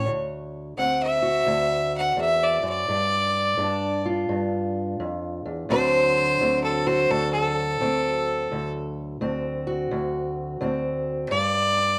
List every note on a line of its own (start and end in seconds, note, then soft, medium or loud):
0.06 0.76 D2 medium
0.78 1.45 D2 medium
0.78 2.87 C4 medium
0.78 1.01 F#5 medium
1.03 1.93 E5 loud
1.22 2.86 F#4 medium
1.47 2.16 D2 medium
1.98 2.19 F#5 medium
2.17 2.62 E2 medium
2.21 2.45 E5 medium
2.43 2.66 D5 medium
2.63 2.88 F#2 medium
2.70 4.04 D5 loud
2.88 3.56 G2 medium
3.57 4.28 G2 medium
3.57 5.71 D4 medium
4.06 5.68 F4 medium
4.29 4.99 G2 medium
5.00 5.45 F2 medium
5.46 5.69 E2 medium
5.69 6.40 D2 medium
5.69 11.32 D3 medium
5.69 11.32 F#3 medium
5.69 6.41 C4 medium
5.69 6.86 F#4 medium
5.69 6.61 C5 loud
6.41 7.10 D2 medium
6.41 7.80 C4 medium
6.64 6.88 A4 medium
6.86 8.49 F#4 medium
6.86 7.13 C5 medium
7.10 7.79 D2 medium
7.10 7.32 A4 loud
7.33 8.70 A4 medium
7.81 8.50 D2 medium
7.81 8.48 C4 medium
8.52 9.20 D2 medium
9.21 9.90 D2 medium
9.21 10.60 C4 medium
9.67 11.29 F#4 medium
9.91 10.59 D2 medium
10.61 11.31 D2 medium
10.61 11.29 C4 medium
11.31 11.99 G2 medium
11.31 11.99 D5 loud